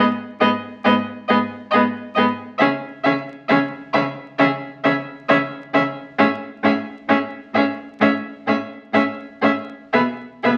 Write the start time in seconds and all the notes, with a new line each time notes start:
0.40 G#2 B3 G#4 D#5
0.84 G#2 B3 G#4 D#5
1.28 G#2 B3 G#4 D#5
1.71 G#2 B3 G#4 D#5
2.15 G#2 B3 G#4 D#5
2.58 C#3 C#4 G#4 E5
3.04 C#3 C#4 G#4 E5
3.48 C#3 C#4 G#4 E5
3.93 C#3 C#4 G#4 E5
4.38 C#3 C#4 G#4 E5
4.84 C#3 C#4 G#4 E5
5.29 C#3 C#4 G#4 E5
5.74 C#3 C#4 G#4 E5
6.19 A2 C#4 G#4 E5
6.63 A2 C#4 G#4 E5
7.08 A2 C#4 G#4 E5
7.54 A2 C#4 G#4 E5
8.00 A2 C#4 G#4 E5
8.47 A2 C#4 G#4 E5
8.93 A2 C#4 G#4 E5
9.42 A2 C#4 G#4 E5
9.93 B2 B3 G#4 E5
10.43 B2 B3 G#4 E5